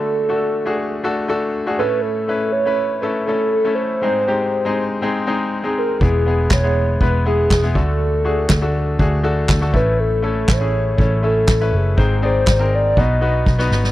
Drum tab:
CP |----------------|----------------|----------------|----x-------x---|
SD |----------------|----------------|----------------|----o-------oo--|
BD |----------------|----------------|----------------|o---o---o---o-o-|

CP |----x-------x---|----x-------x---|----x-----------|
SD |----o-------oo--|----o-------oo--|----o-------oooo|
BD |----o---o---o-o-|----o---o---o---|o---o---o---o---|